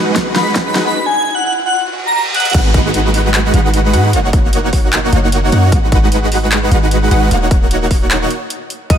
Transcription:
Already playing: G#3 D#4 F#4 B4 F#5, riser
0.16 kick, snare, closed hi-hat
0.36 G#3 D#4 F#4 B4 F#5 B5, snare, closed hi-hat
0.56 kick, snare, closed hi-hat
0.66 B5
0.74 G#3 D#4 F#4 B4 F#5, snare, closed hi-hat
0.86 B5
0.95 B5
1.06 G#5
1.35 F#5
1.46 F#5
1.66 F#5
1.75 reverse cymbal
2.06 A#5
2.15 A#5
2.34 F#5, closed hi-hat
2.40 closed hi-hat
2.45 closed hi-hat
2.50 closed hi-hat
2.54 G#1 G#3 D#4 F#4 B4 F#5, kick, closed hi-hat, crash, downlifter
2.74 kick, closed hi-hat
2.94 closed hi-hat
3.14 open hi-hat
3.34 clap, closed hi-hat
3.54 G#1 G#3 D#4 F#4 B4 F#5, closed hi-hat
3.74 closed hi-hat
3.93 G#2 G#3 D#4 F#4 B4 F#5, closed hi-hat
4.13 F#1 A#3 D#4 F#4 C#5 F#5, closed hi-hat
4.33 kick, closed hi-hat
4.53 closed hi-hat
4.73 kick, open hi-hat
4.93 clap, closed hi-hat
5.13 F#1 A#3 D#4 F#4 C#5 F#5, closed hi-hat
5.32 closed hi-hat
5.52 F#2 A#3 D#4 F#4 C#5 F#5, closed hi-hat
5.72 G#1 G#3 D#4 F#4 B4 F#5, kick, closed hi-hat
5.92 kick, closed hi-hat
6.12 closed hi-hat
6.32 open hi-hat
6.52 clap, closed hi-hat
6.71 G#1 G#3 D#4 F#4 B4 F#5, closed hi-hat
6.91 closed hi-hat
7.11 G#1 G#3 D#4 F#4 B4 F#5, closed hi-hat
7.31 D#1 A#3 D#4 F#4 C#5 F#5, closed hi-hat
7.51 kick, closed hi-hat
7.71 closed hi-hat
7.91 kick, open hi-hat
8.11 clap, closed hi-hat
8.30 closed hi-hat
8.50 closed hi-hat
8.70 closed hi-hat
8.90 G#1 G#3 D#4 F#4 B4 D#5 F#5, kick, closed hi-hat

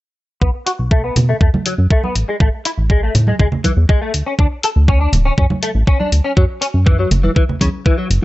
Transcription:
0.42 B1 B3, kick
0.66 F#4, open hi-hat
0.79 B1
0.91 A3, kick
1.04 B3
1.16 B2, open hi-hat, low conga
1.29 A3
1.41 E2 A3, kick
1.54 high conga, low conga
1.66 F#3, open hi-hat
1.78 F#2
1.91 A3, kick
2.04 B3, high conga
2.15 A1, open hi-hat
2.29 G#3
2.40 A1 A3, kick
2.65 E4, open hi-hat
2.77 A1
2.90 G#3, kick
3.03 A3
3.15 A2, open hi-hat, low conga
3.27 G#3, high conga
3.39 C#2 G#3, kick
3.52 low conga
3.64 E3, kick, open hi-hat, high conga
3.77 E2
3.89 G#3, kick
4.02 A3
4.14 D2, open hi-hat
4.26 C#4
4.39 D2 D4, kick
4.63 A4, open hi-hat
4.76 D2
4.88 C#4, kick
5.00 D4
5.13 D1, open hi-hat, low conga
5.25 C#4
5.38 F#2 C#4, kick
5.50 high conga, low conga
5.63 A3, open hi-hat
5.75 A1
5.87 C#4, kick
6.00 D4, high conga
6.12 D2, open hi-hat
6.24 C#4
6.37 F#2 F#3, kick
6.61 C#4, open hi-hat
6.74 F#2
6.86 E3, kick
6.99 F#3
7.11 F#1, open hi-hat, low conga
7.23 E3, high conga
7.36 E3, kick
7.48 E2, low conga
7.61 E2 C#3, kick, open hi-hat, high conga
7.86 E3, kick
7.98 F#3
8.10 F#1, open hi-hat

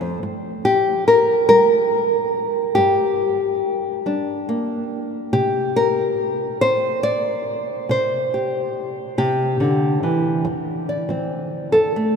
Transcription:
Already playing: F3 A3 C4 C5
0.01 F2
0.23 G2
0.65 G4
1.08 A#4
1.49 G3 A#4
2.75 G2 G4
4.06 G3 D4
4.49 A#3
5.33 C3 G4
5.76 A#4
6.61 C4 C5
7.03 D5
7.89 C3 C5
8.34 G4
9.18 C3 G4
9.60 D3
10.03 E3
10.45 F2
10.89 D5
11.09 F3 C4
11.72 F2 A4
11.96 A3

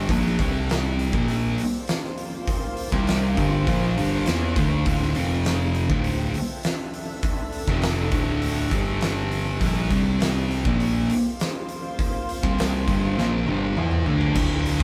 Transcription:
0.09 A#1 A#2 F3 A#3, kick, open hi-hat
0.27 snare
0.39 C2 C3 G3 C4, kick, open hi-hat
0.70 snare, open hi-hat
0.99 open hi-hat
1.13 A#1 A#2 F3 A#3 F4 C5, kick
1.28 open hi-hat
1.58 open hi-hat
1.88 snare, open hi-hat
2.04 snare
2.18 open hi-hat
2.47 kick, open hi-hat
2.77 open hi-hat
2.92 C2 C3 G3 C4, kick
3.07 snare, open hi-hat
3.37 G1 G2 D3 G3, kick, open hi-hat
3.67 A#1 A#2 F3 A#3, kick, open hi-hat
3.97 G1 G2 D3 G3, open hi-hat
4.26 E2 E3 B3 E4, snare, open hi-hat
4.56 D2 D3 A3 D4, kick, open hi-hat
4.86 D1 D2 A2 D3, kick, open hi-hat
5.03 snare
5.15 F1 F2 C3 F3, open hi-hat
5.45 snare, open hi-hat
5.75 open hi-hat
5.89 D1 D2 A2 D3 D4 A4 E5, kick
6.04 open hi-hat
6.34 open hi-hat
6.63 snare, open hi-hat
6.94 open hi-hat
7.23 kick, open hi-hat
7.52 open hi-hat
7.67 F1 F2 C3 F3, kick
7.82 snare, open hi-hat
8.11 D1 D2 A2 D3, kick, open hi-hat
8.42 open hi-hat
8.71 G1 G2 D3 G3, kick, open hi-hat
9.01 snare, open hi-hat
9.32 open hi-hat
9.61 A#1 A#2 F3 A#3, kick, open hi-hat
9.90 C2 C3 G3 C4, kick, open hi-hat
10.20 snare, open hi-hat
10.51 open hi-hat
10.64 A#1 A#2 F3 A#3 F4 C5, kick
10.80 open hi-hat
11.10 open hi-hat
11.40 snare, open hi-hat
11.69 open hi-hat
11.99 kick, open hi-hat
12.29 open hi-hat
12.43 C2 C3 G3 C4, kick
12.59 snare, open hi-hat
12.87 G1 G2 D3 G3, kick, open hi-hat
13.02 D5
13.17 A#1 A#2 F3 A#3, snare
13.47 G1 G2 D3 G3, high tom
13.77 E2 E3 B3 E4, mid tom
13.91 mid tom
14.06 D2 D3 A3 D4, floor tom
14.21 floor tom
14.35 D1 D2 A2 D3, kick, crash
14.66 open hi-hat

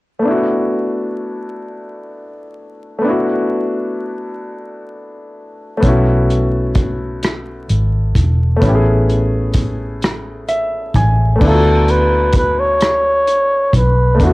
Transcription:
0.19 A3 B3
0.25 D4 E4
0.31 F#4
2.99 A3 B3
3.04 D4 E4
3.10 F#4
5.77 A3 B3
5.83 B1 C#4 E4, kick, closed hi-hat
5.89 F#4
6.30 closed hi-hat
6.75 kick, closed hi-hat
7.23 cross-stick, closed hi-hat
7.69 G#1, closed hi-hat
8.15 E1, kick, closed hi-hat
8.57 A3 B3
8.62 A1 C#4 E4, kick, closed hi-hat
8.69 G4
8.75 G#4
9.10 closed hi-hat
9.54 kick, closed hi-hat
10.02 cross-stick, closed hi-hat
10.48 E5, closed hi-hat
10.94 A1 G#5, kick, closed hi-hat
11.36 A3 B3
11.41 D2 D4 E4, kick, crash
11.46 F4 A4
11.54 F#4
11.88 B4, closed hi-hat
12.33 kick, closed hi-hat
12.37 B4
12.60 C#5
12.81 cross-stick, closed hi-hat
13.28 B1, closed hi-hat
13.73 B1 B4, kick, closed hi-hat
14.15 A3 B3
14.20 E2 D4 E4 F#4, kick, closed hi-hat
14.26 F#4

